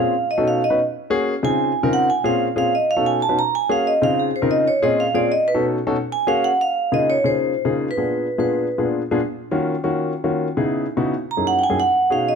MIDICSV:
0, 0, Header, 1, 3, 480
1, 0, Start_track
1, 0, Key_signature, -5, "major"
1, 0, Tempo, 323625
1, 199, Time_signature, 4, 2, 24, 8
1, 18320, End_track
2, 0, Start_track
2, 0, Title_t, "Vibraphone"
2, 0, Program_c, 0, 11
2, 0, Note_on_c, 0, 77, 93
2, 399, Note_off_c, 0, 77, 0
2, 456, Note_on_c, 0, 75, 81
2, 680, Note_off_c, 0, 75, 0
2, 705, Note_on_c, 0, 77, 86
2, 925, Note_off_c, 0, 77, 0
2, 951, Note_on_c, 0, 75, 91
2, 1169, Note_off_c, 0, 75, 0
2, 2145, Note_on_c, 0, 80, 95
2, 2803, Note_off_c, 0, 80, 0
2, 2864, Note_on_c, 0, 78, 96
2, 3085, Note_off_c, 0, 78, 0
2, 3113, Note_on_c, 0, 80, 88
2, 3329, Note_off_c, 0, 80, 0
2, 3348, Note_on_c, 0, 77, 81
2, 3483, Note_off_c, 0, 77, 0
2, 3827, Note_on_c, 0, 77, 97
2, 4046, Note_off_c, 0, 77, 0
2, 4077, Note_on_c, 0, 75, 76
2, 4291, Note_off_c, 0, 75, 0
2, 4312, Note_on_c, 0, 77, 98
2, 4528, Note_off_c, 0, 77, 0
2, 4544, Note_on_c, 0, 80, 84
2, 4764, Note_off_c, 0, 80, 0
2, 4780, Note_on_c, 0, 81, 99
2, 5002, Note_off_c, 0, 81, 0
2, 5022, Note_on_c, 0, 82, 101
2, 5243, Note_off_c, 0, 82, 0
2, 5267, Note_on_c, 0, 80, 96
2, 5485, Note_off_c, 0, 80, 0
2, 5511, Note_on_c, 0, 77, 84
2, 5727, Note_off_c, 0, 77, 0
2, 5743, Note_on_c, 0, 75, 90
2, 5963, Note_off_c, 0, 75, 0
2, 5984, Note_on_c, 0, 77, 107
2, 6203, Note_off_c, 0, 77, 0
2, 6222, Note_on_c, 0, 68, 66
2, 6442, Note_off_c, 0, 68, 0
2, 6464, Note_on_c, 0, 72, 72
2, 6683, Note_off_c, 0, 72, 0
2, 6686, Note_on_c, 0, 75, 104
2, 6913, Note_off_c, 0, 75, 0
2, 6935, Note_on_c, 0, 73, 85
2, 7158, Note_off_c, 0, 73, 0
2, 7172, Note_on_c, 0, 75, 78
2, 7396, Note_off_c, 0, 75, 0
2, 7417, Note_on_c, 0, 77, 89
2, 7638, Note_off_c, 0, 77, 0
2, 7640, Note_on_c, 0, 74, 96
2, 7869, Note_off_c, 0, 74, 0
2, 7885, Note_on_c, 0, 75, 91
2, 8112, Note_off_c, 0, 75, 0
2, 8125, Note_on_c, 0, 71, 97
2, 8265, Note_off_c, 0, 71, 0
2, 9083, Note_on_c, 0, 80, 104
2, 9301, Note_off_c, 0, 80, 0
2, 9318, Note_on_c, 0, 77, 96
2, 9557, Note_on_c, 0, 78, 91
2, 9562, Note_off_c, 0, 77, 0
2, 9801, Note_off_c, 0, 78, 0
2, 9808, Note_on_c, 0, 77, 96
2, 10289, Note_on_c, 0, 75, 88
2, 10294, Note_off_c, 0, 77, 0
2, 10526, Note_on_c, 0, 73, 93
2, 10527, Note_off_c, 0, 75, 0
2, 10764, Note_on_c, 0, 72, 80
2, 10765, Note_off_c, 0, 73, 0
2, 11427, Note_off_c, 0, 72, 0
2, 11729, Note_on_c, 0, 71, 89
2, 12439, Note_off_c, 0, 71, 0
2, 12456, Note_on_c, 0, 71, 72
2, 13114, Note_off_c, 0, 71, 0
2, 16775, Note_on_c, 0, 82, 86
2, 17011, Note_off_c, 0, 82, 0
2, 17015, Note_on_c, 0, 78, 94
2, 17172, Note_off_c, 0, 78, 0
2, 17186, Note_on_c, 0, 79, 65
2, 17239, Note_off_c, 0, 79, 0
2, 17257, Note_on_c, 0, 80, 91
2, 17360, Note_off_c, 0, 80, 0
2, 17497, Note_on_c, 0, 78, 106
2, 17932, Note_off_c, 0, 78, 0
2, 17981, Note_on_c, 0, 77, 92
2, 18083, Note_off_c, 0, 77, 0
2, 18222, Note_on_c, 0, 75, 95
2, 18320, Note_off_c, 0, 75, 0
2, 18320, End_track
3, 0, Start_track
3, 0, Title_t, "Grand piano"
3, 0, Program_c, 1, 0
3, 0, Note_on_c, 1, 46, 82
3, 0, Note_on_c, 1, 60, 79
3, 0, Note_on_c, 1, 61, 63
3, 0, Note_on_c, 1, 65, 72
3, 0, Note_on_c, 1, 68, 84
3, 197, Note_off_c, 1, 61, 0
3, 198, Note_off_c, 1, 46, 0
3, 198, Note_off_c, 1, 60, 0
3, 198, Note_off_c, 1, 65, 0
3, 198, Note_off_c, 1, 68, 0
3, 558, Note_on_c, 1, 63, 82
3, 558, Note_on_c, 1, 69, 97
3, 560, Note_on_c, 1, 61, 81
3, 561, Note_on_c, 1, 66, 80
3, 562, Note_on_c, 1, 47, 91
3, 894, Note_off_c, 1, 69, 0
3, 895, Note_off_c, 1, 61, 0
3, 895, Note_off_c, 1, 63, 0
3, 896, Note_off_c, 1, 66, 0
3, 897, Note_off_c, 1, 47, 0
3, 1038, Note_on_c, 1, 47, 72
3, 1040, Note_on_c, 1, 66, 72
3, 1041, Note_on_c, 1, 71, 90
3, 1043, Note_on_c, 1, 61, 80
3, 1044, Note_on_c, 1, 63, 74
3, 1158, Note_off_c, 1, 47, 0
3, 1160, Note_off_c, 1, 66, 0
3, 1160, Note_off_c, 1, 71, 0
3, 1161, Note_off_c, 1, 61, 0
3, 1161, Note_off_c, 1, 63, 0
3, 1634, Note_on_c, 1, 58, 100
3, 1634, Note_on_c, 1, 61, 88
3, 1636, Note_on_c, 1, 66, 98
3, 1640, Note_on_c, 1, 68, 120
3, 1973, Note_off_c, 1, 58, 0
3, 1973, Note_off_c, 1, 61, 0
3, 1974, Note_off_c, 1, 66, 0
3, 1976, Note_off_c, 1, 68, 0
3, 2119, Note_on_c, 1, 60, 81
3, 2120, Note_on_c, 1, 68, 89
3, 2121, Note_on_c, 1, 65, 78
3, 2122, Note_on_c, 1, 49, 80
3, 2122, Note_on_c, 1, 63, 75
3, 2539, Note_off_c, 1, 60, 0
3, 2540, Note_off_c, 1, 65, 0
3, 2540, Note_off_c, 1, 68, 0
3, 2541, Note_off_c, 1, 49, 0
3, 2541, Note_off_c, 1, 63, 0
3, 2716, Note_on_c, 1, 65, 88
3, 2717, Note_on_c, 1, 60, 88
3, 2717, Note_on_c, 1, 63, 78
3, 2718, Note_on_c, 1, 49, 90
3, 2718, Note_on_c, 1, 70, 104
3, 3078, Note_off_c, 1, 60, 0
3, 3078, Note_off_c, 1, 63, 0
3, 3078, Note_off_c, 1, 65, 0
3, 3079, Note_off_c, 1, 49, 0
3, 3079, Note_off_c, 1, 70, 0
3, 3323, Note_on_c, 1, 46, 88
3, 3323, Note_on_c, 1, 61, 78
3, 3324, Note_on_c, 1, 60, 86
3, 3324, Note_on_c, 1, 65, 85
3, 3326, Note_on_c, 1, 68, 96
3, 3657, Note_off_c, 1, 46, 0
3, 3657, Note_off_c, 1, 61, 0
3, 3657, Note_off_c, 1, 65, 0
3, 3658, Note_off_c, 1, 60, 0
3, 3658, Note_off_c, 1, 68, 0
3, 3795, Note_on_c, 1, 46, 73
3, 3796, Note_on_c, 1, 61, 65
3, 3796, Note_on_c, 1, 65, 67
3, 3796, Note_on_c, 1, 68, 90
3, 3798, Note_on_c, 1, 60, 74
3, 4037, Note_off_c, 1, 46, 0
3, 4037, Note_off_c, 1, 61, 0
3, 4037, Note_off_c, 1, 65, 0
3, 4037, Note_off_c, 1, 68, 0
3, 4038, Note_off_c, 1, 60, 0
3, 4398, Note_on_c, 1, 66, 74
3, 4399, Note_on_c, 1, 47, 86
3, 4399, Note_on_c, 1, 63, 70
3, 4399, Note_on_c, 1, 69, 94
3, 4400, Note_on_c, 1, 61, 77
3, 4734, Note_off_c, 1, 47, 0
3, 4734, Note_off_c, 1, 66, 0
3, 4734, Note_off_c, 1, 69, 0
3, 4735, Note_off_c, 1, 61, 0
3, 4735, Note_off_c, 1, 63, 0
3, 4877, Note_on_c, 1, 47, 73
3, 4878, Note_on_c, 1, 63, 76
3, 4878, Note_on_c, 1, 66, 77
3, 4879, Note_on_c, 1, 61, 73
3, 4879, Note_on_c, 1, 71, 80
3, 4997, Note_off_c, 1, 47, 0
3, 4998, Note_off_c, 1, 63, 0
3, 4998, Note_off_c, 1, 66, 0
3, 4998, Note_off_c, 1, 71, 0
3, 4999, Note_off_c, 1, 61, 0
3, 5478, Note_on_c, 1, 58, 80
3, 5478, Note_on_c, 1, 66, 78
3, 5479, Note_on_c, 1, 68, 102
3, 5480, Note_on_c, 1, 61, 85
3, 5813, Note_off_c, 1, 58, 0
3, 5813, Note_off_c, 1, 66, 0
3, 5814, Note_off_c, 1, 61, 0
3, 5814, Note_off_c, 1, 68, 0
3, 5957, Note_on_c, 1, 68, 83
3, 5958, Note_on_c, 1, 63, 74
3, 5959, Note_on_c, 1, 49, 87
3, 5959, Note_on_c, 1, 60, 80
3, 5960, Note_on_c, 1, 65, 74
3, 6376, Note_off_c, 1, 68, 0
3, 6377, Note_off_c, 1, 49, 0
3, 6377, Note_off_c, 1, 60, 0
3, 6377, Note_off_c, 1, 63, 0
3, 6378, Note_off_c, 1, 65, 0
3, 6554, Note_on_c, 1, 63, 88
3, 6554, Note_on_c, 1, 70, 99
3, 6557, Note_on_c, 1, 60, 83
3, 6558, Note_on_c, 1, 49, 88
3, 6558, Note_on_c, 1, 65, 81
3, 6914, Note_off_c, 1, 63, 0
3, 6914, Note_off_c, 1, 70, 0
3, 6916, Note_off_c, 1, 49, 0
3, 6916, Note_off_c, 1, 60, 0
3, 6916, Note_off_c, 1, 65, 0
3, 7155, Note_on_c, 1, 46, 89
3, 7156, Note_on_c, 1, 65, 82
3, 7157, Note_on_c, 1, 61, 85
3, 7157, Note_on_c, 1, 68, 111
3, 7158, Note_on_c, 1, 60, 81
3, 7490, Note_off_c, 1, 46, 0
3, 7491, Note_off_c, 1, 61, 0
3, 7491, Note_off_c, 1, 65, 0
3, 7491, Note_off_c, 1, 68, 0
3, 7492, Note_off_c, 1, 60, 0
3, 7629, Note_on_c, 1, 60, 76
3, 7630, Note_on_c, 1, 46, 79
3, 7630, Note_on_c, 1, 61, 69
3, 7630, Note_on_c, 1, 65, 69
3, 7631, Note_on_c, 1, 68, 94
3, 7871, Note_off_c, 1, 46, 0
3, 7871, Note_off_c, 1, 60, 0
3, 7871, Note_off_c, 1, 65, 0
3, 7872, Note_off_c, 1, 61, 0
3, 7872, Note_off_c, 1, 68, 0
3, 8224, Note_on_c, 1, 66, 71
3, 8225, Note_on_c, 1, 47, 93
3, 8225, Note_on_c, 1, 69, 96
3, 8227, Note_on_c, 1, 61, 73
3, 8227, Note_on_c, 1, 63, 79
3, 8564, Note_off_c, 1, 66, 0
3, 8565, Note_off_c, 1, 47, 0
3, 8565, Note_off_c, 1, 61, 0
3, 8565, Note_off_c, 1, 69, 0
3, 8566, Note_off_c, 1, 63, 0
3, 8703, Note_on_c, 1, 47, 95
3, 8703, Note_on_c, 1, 61, 85
3, 8704, Note_on_c, 1, 63, 82
3, 8704, Note_on_c, 1, 69, 107
3, 8705, Note_on_c, 1, 66, 95
3, 8828, Note_off_c, 1, 47, 0
3, 8828, Note_off_c, 1, 61, 0
3, 8828, Note_off_c, 1, 63, 0
3, 8828, Note_off_c, 1, 69, 0
3, 8829, Note_off_c, 1, 66, 0
3, 9300, Note_on_c, 1, 61, 93
3, 9300, Note_on_c, 1, 68, 97
3, 9303, Note_on_c, 1, 58, 92
3, 9303, Note_on_c, 1, 66, 99
3, 9641, Note_off_c, 1, 68, 0
3, 9642, Note_off_c, 1, 61, 0
3, 9643, Note_off_c, 1, 58, 0
3, 9643, Note_off_c, 1, 66, 0
3, 10261, Note_on_c, 1, 63, 75
3, 10262, Note_on_c, 1, 58, 73
3, 10262, Note_on_c, 1, 68, 74
3, 10263, Note_on_c, 1, 49, 83
3, 10265, Note_on_c, 1, 65, 73
3, 10602, Note_off_c, 1, 58, 0
3, 10602, Note_off_c, 1, 63, 0
3, 10602, Note_off_c, 1, 68, 0
3, 10603, Note_off_c, 1, 49, 0
3, 10604, Note_off_c, 1, 65, 0
3, 10741, Note_on_c, 1, 49, 74
3, 10741, Note_on_c, 1, 58, 65
3, 10742, Note_on_c, 1, 65, 68
3, 10742, Note_on_c, 1, 68, 83
3, 10743, Note_on_c, 1, 63, 62
3, 11166, Note_off_c, 1, 49, 0
3, 11166, Note_off_c, 1, 58, 0
3, 11166, Note_off_c, 1, 65, 0
3, 11166, Note_off_c, 1, 68, 0
3, 11167, Note_off_c, 1, 63, 0
3, 11344, Note_on_c, 1, 58, 68
3, 11344, Note_on_c, 1, 65, 73
3, 11345, Note_on_c, 1, 49, 82
3, 11347, Note_on_c, 1, 63, 78
3, 11347, Note_on_c, 1, 68, 91
3, 11683, Note_off_c, 1, 58, 0
3, 11683, Note_off_c, 1, 65, 0
3, 11684, Note_off_c, 1, 49, 0
3, 11685, Note_off_c, 1, 63, 0
3, 11685, Note_off_c, 1, 68, 0
3, 11827, Note_on_c, 1, 46, 70
3, 11828, Note_on_c, 1, 62, 58
3, 11829, Note_on_c, 1, 68, 78
3, 11830, Note_on_c, 1, 59, 61
3, 11830, Note_on_c, 1, 65, 66
3, 12249, Note_off_c, 1, 46, 0
3, 12249, Note_off_c, 1, 62, 0
3, 12250, Note_off_c, 1, 59, 0
3, 12250, Note_off_c, 1, 65, 0
3, 12250, Note_off_c, 1, 68, 0
3, 12432, Note_on_c, 1, 59, 69
3, 12434, Note_on_c, 1, 46, 78
3, 12434, Note_on_c, 1, 62, 70
3, 12434, Note_on_c, 1, 65, 71
3, 12434, Note_on_c, 1, 68, 83
3, 12852, Note_off_c, 1, 46, 0
3, 12852, Note_off_c, 1, 59, 0
3, 12852, Note_off_c, 1, 65, 0
3, 12853, Note_off_c, 1, 62, 0
3, 12853, Note_off_c, 1, 68, 0
3, 13025, Note_on_c, 1, 62, 70
3, 13025, Note_on_c, 1, 65, 75
3, 13026, Note_on_c, 1, 46, 78
3, 13026, Note_on_c, 1, 59, 68
3, 13027, Note_on_c, 1, 68, 76
3, 13364, Note_off_c, 1, 46, 0
3, 13364, Note_off_c, 1, 62, 0
3, 13364, Note_off_c, 1, 65, 0
3, 13365, Note_off_c, 1, 59, 0
3, 13365, Note_off_c, 1, 68, 0
3, 13515, Note_on_c, 1, 68, 95
3, 13517, Note_on_c, 1, 46, 98
3, 13517, Note_on_c, 1, 59, 80
3, 13517, Note_on_c, 1, 62, 94
3, 13517, Note_on_c, 1, 65, 82
3, 13633, Note_off_c, 1, 68, 0
3, 13634, Note_off_c, 1, 46, 0
3, 13634, Note_off_c, 1, 59, 0
3, 13634, Note_off_c, 1, 62, 0
3, 13634, Note_off_c, 1, 65, 0
3, 14112, Note_on_c, 1, 51, 94
3, 14112, Note_on_c, 1, 58, 85
3, 14112, Note_on_c, 1, 61, 84
3, 14112, Note_on_c, 1, 65, 81
3, 14112, Note_on_c, 1, 66, 94
3, 14448, Note_off_c, 1, 51, 0
3, 14448, Note_off_c, 1, 58, 0
3, 14448, Note_off_c, 1, 61, 0
3, 14448, Note_off_c, 1, 65, 0
3, 14448, Note_off_c, 1, 66, 0
3, 14591, Note_on_c, 1, 51, 85
3, 14591, Note_on_c, 1, 61, 88
3, 14592, Note_on_c, 1, 58, 81
3, 14592, Note_on_c, 1, 66, 98
3, 14593, Note_on_c, 1, 65, 76
3, 15011, Note_off_c, 1, 51, 0
3, 15011, Note_off_c, 1, 61, 0
3, 15012, Note_off_c, 1, 58, 0
3, 15012, Note_off_c, 1, 65, 0
3, 15012, Note_off_c, 1, 66, 0
3, 15187, Note_on_c, 1, 61, 87
3, 15188, Note_on_c, 1, 66, 92
3, 15189, Note_on_c, 1, 51, 85
3, 15190, Note_on_c, 1, 58, 78
3, 15190, Note_on_c, 1, 65, 80
3, 15525, Note_off_c, 1, 61, 0
3, 15526, Note_off_c, 1, 51, 0
3, 15526, Note_off_c, 1, 66, 0
3, 15527, Note_off_c, 1, 58, 0
3, 15527, Note_off_c, 1, 65, 0
3, 15674, Note_on_c, 1, 59, 75
3, 15676, Note_on_c, 1, 64, 80
3, 15677, Note_on_c, 1, 63, 83
3, 15678, Note_on_c, 1, 49, 81
3, 15678, Note_on_c, 1, 68, 91
3, 16093, Note_off_c, 1, 59, 0
3, 16094, Note_off_c, 1, 63, 0
3, 16094, Note_off_c, 1, 64, 0
3, 16095, Note_off_c, 1, 49, 0
3, 16095, Note_off_c, 1, 68, 0
3, 16266, Note_on_c, 1, 64, 78
3, 16269, Note_on_c, 1, 49, 84
3, 16270, Note_on_c, 1, 63, 82
3, 16271, Note_on_c, 1, 59, 84
3, 16271, Note_on_c, 1, 66, 96
3, 16509, Note_off_c, 1, 64, 0
3, 16511, Note_off_c, 1, 49, 0
3, 16511, Note_off_c, 1, 59, 0
3, 16511, Note_off_c, 1, 63, 0
3, 16512, Note_off_c, 1, 66, 0
3, 16866, Note_on_c, 1, 61, 59
3, 16867, Note_on_c, 1, 68, 67
3, 16868, Note_on_c, 1, 42, 62
3, 16869, Note_on_c, 1, 64, 59
3, 16870, Note_on_c, 1, 58, 55
3, 16870, Note_on_c, 1, 63, 59
3, 17205, Note_off_c, 1, 61, 0
3, 17206, Note_off_c, 1, 42, 0
3, 17206, Note_off_c, 1, 68, 0
3, 17207, Note_off_c, 1, 58, 0
3, 17207, Note_off_c, 1, 63, 0
3, 17207, Note_off_c, 1, 64, 0
3, 17348, Note_on_c, 1, 61, 75
3, 17348, Note_on_c, 1, 64, 67
3, 17349, Note_on_c, 1, 42, 77
3, 17349, Note_on_c, 1, 58, 72
3, 17350, Note_on_c, 1, 63, 70
3, 17350, Note_on_c, 1, 68, 89
3, 17470, Note_off_c, 1, 61, 0
3, 17471, Note_off_c, 1, 42, 0
3, 17471, Note_off_c, 1, 58, 0
3, 17471, Note_off_c, 1, 63, 0
3, 17471, Note_off_c, 1, 64, 0
3, 17471, Note_off_c, 1, 68, 0
3, 17949, Note_on_c, 1, 63, 71
3, 17950, Note_on_c, 1, 47, 76
3, 17950, Note_on_c, 1, 61, 65
3, 17953, Note_on_c, 1, 68, 88
3, 17954, Note_on_c, 1, 66, 66
3, 18287, Note_off_c, 1, 63, 0
3, 18288, Note_off_c, 1, 47, 0
3, 18288, Note_off_c, 1, 61, 0
3, 18289, Note_off_c, 1, 68, 0
3, 18290, Note_off_c, 1, 66, 0
3, 18320, End_track
0, 0, End_of_file